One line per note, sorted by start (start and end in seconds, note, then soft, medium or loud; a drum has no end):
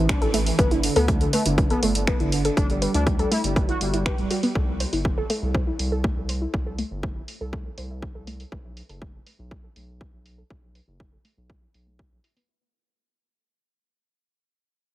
0.00 0.14 A1 medium
0.09 0.19 D4 medium
0.09 finger snap loud
0.09 kick loud
0.09 closed hi-hat medium
0.22 0.51 A1 medium
0.22 0.31 E3 medium
0.22 0.31 A4 loud
0.22 closed hi-hat soft
0.34 0.44 E3 medium
0.34 0.40 A3 loud
0.34 open hi-hat loud
0.46 0.56 E3 medium
0.46 open hi-hat medium
0.59 0.88 G1 loud
0.59 0.68 B3 loud
0.59 0.62 B4 medium
0.59 kick loud
0.59 closed hi-hat medium
0.71 0.81 D3 medium
0.71 0.80 E4 medium
0.71 closed hi-hat soft
0.83 0.93 D3 medium
0.83 open hi-hat loud
0.96 1.26 D2 loud
0.96 1.06 B3 medium
0.96 1.05 A4 loud
0.96 open hi-hat medium
1.08 1.18 D3 medium
1.08 1.15 A3 loud
1.08 kick loud
1.08 closed hi-hat medium
1.21 1.30 D3 medium
1.21 closed hi-hat soft
1.33 1.43 A3 medium
1.33 1.37 B4 medium
1.33 open hi-hat loud
1.45 1.75 G1 medium
1.45 1.55 D3 medium
1.45 1.55 E4 medium
1.45 closed hi-hat medium
1.58 1.68 D3 medium
1.58 kick loud
1.58 closed hi-hat medium
1.70 1.80 B3 medium
1.70 1.80 A4 loud
1.70 closed hi-hat soft
1.82 2.12 G1 loud
1.82 1.92 D3 medium
1.82 1.89 A3 loud
1.82 open hi-hat loud
1.95 2.05 D3 medium
1.95 closed hi-hat medium
2.07 2.17 B3 medium
2.07 2.11 B4 medium
2.07 finger snap loud
2.07 kick loud
2.07 closed hi-hat medium
2.20 2.50 G1 medium
2.20 2.30 D3 medium
2.20 2.29 E4 medium
2.20 closed hi-hat soft
2.32 2.42 D3 medium
2.32 open hi-hat loud
2.45 2.54 D3 medium
2.45 2.54 A4 loud
2.45 closed hi-hat medium
2.57 2.87 G1 loud
2.57 2.63 A3 medium
2.57 2.67 D4 medium
2.57 kick loud
2.57 closed hi-hat medium
2.69 2.79 G3 medium
2.69 closed hi-hat soft
2.82 2.92 G3 medium
2.82 2.86 B4 medium
2.82 open hi-hat loud
2.94 3.24 D2 loud
2.94 3.04 D4 loud
2.94 3.04 E4 medium
2.94 closed hi-hat medium
3.07 3.16 G3 medium
3.07 kick loud
3.07 closed hi-hat medium
3.19 3.29 G3 medium
3.19 3.28 A4 loud
3.19 closed hi-hat soft
3.31 3.38 A3 loud
3.31 3.41 E4 medium
3.31 open hi-hat loud
3.44 3.74 G1 medium
3.44 3.54 G3 medium
3.44 closed hi-hat medium
3.56 3.66 G3 medium
3.56 3.60 B4 medium
3.56 kick loud
3.56 closed hi-hat soft
3.69 3.78 E4 medium
3.69 3.78 F#4 medium
3.69 closed hi-hat soft
3.81 4.11 G1 medium
3.81 3.91 G3 medium
3.81 open hi-hat loud
3.94 4.03 G3 medium
3.94 4.00 E4 medium
3.94 closed hi-hat medium
4.06 4.16 G4 medium
4.06 4.10 B4 loud
4.06 finger snap loud
4.06 kick loud
4.06 closed hi-hat soft
4.18 4.26 D1 medium
4.18 4.28 G3 medium
4.18 closed hi-hat soft
4.31 4.41 G3 medium
4.31 4.34 F#4 medium
4.31 open hi-hat loud
4.43 4.53 G3 medium
4.43 4.47 B3 loud
4.43 open hi-hat medium
4.55 4.85 C2 loud
4.55 4.62 A3 loud
4.55 kick loud
4.80 4.84 C5 medium
4.80 open hi-hat loud
4.93 5.22 G1 loud
4.93 5.02 E4 medium
4.93 open hi-hat medium
5.05 kick loud
5.18 5.27 A4 loud
5.30 5.36 A3 loud
5.30 open hi-hat loud
5.42 5.72 C2 medium
5.55 5.58 C5 medium
5.55 kick loud
5.67 5.76 E4 medium
5.79 6.09 C2 loud
5.79 open hi-hat loud
5.92 6.01 A4 medium
6.04 6.10 A3 loud
6.04 kick loud
6.17 6.46 C2 medium
6.29 6.33 C5 medium
6.29 open hi-hat loud
6.42 6.51 E4 medium
6.54 6.83 C2 loud
6.54 kick loud
6.67 6.76 A4 loud
6.79 6.85 A3 loud
6.79 open hi-hat medium
6.91 7.21 G1 loud
7.03 7.07 C5 medium
7.03 kick loud
7.16 7.25 E4 medium
7.28 open hi-hat loud
7.41 7.70 C2 medium
7.41 7.50 A4 loud
7.53 7.59 A3 loud
7.53 kick loud
7.78 8.08 C2 loud
7.78 7.82 C5 medium
7.78 open hi-hat loud
7.90 8.00 E4 medium
8.02 kick loud
8.15 8.45 C2 medium
8.15 8.24 A4 loud
8.27 8.34 A3 loud
8.27 open hi-hat loud
8.40 open hi-hat medium
8.52 8.82 B1 loud
8.52 8.56 B4 medium
8.52 kick loud
8.64 8.74 E4 medium
8.77 open hi-hat medium
8.89 9.19 F#1 loud
8.89 8.99 A4 loud
8.89 open hi-hat medium
9.02 9.08 A3 loud
9.02 kick loud
9.26 9.30 B4 medium
9.26 open hi-hat medium
9.39 9.69 B1 medium
9.39 9.48 E4 medium
9.51 kick loud
9.64 9.73 A4 loud
9.76 10.06 B1 medium
9.76 9.82 A3 medium
9.76 open hi-hat loud
10.01 10.05 B4 medium
10.01 kick loud
10.13 10.43 B1 medium
10.13 10.23 E4 medium
10.26 open hi-hat medium
10.38 10.47 A4 loud
10.50 10.80 B1 loud
10.50 10.57 A3 medium
10.50 kick loud
10.75 10.79 B4 medium
10.75 open hi-hat medium
10.88 11.17 F#1 loud
10.88 10.97 E4 medium
11.00 kick loud
11.13 11.22 A4 loud
11.25 11.31 A3 loud
11.25 open hi-hat loud
11.37 11.67 B1 medium
11.50 kick loud
11.62 11.71 E4 medium
11.74 12.04 B1 medium
11.74 open hi-hat loud
11.87 11.91 A3 medium
11.99 12.05 F#4 medium
11.99 kick loud
12.12 12.19 B1 loud
12.24 12.30 E4 medium
12.24 open hi-hat medium
12.37 12.43 B3 loud
12.37 open hi-hat medium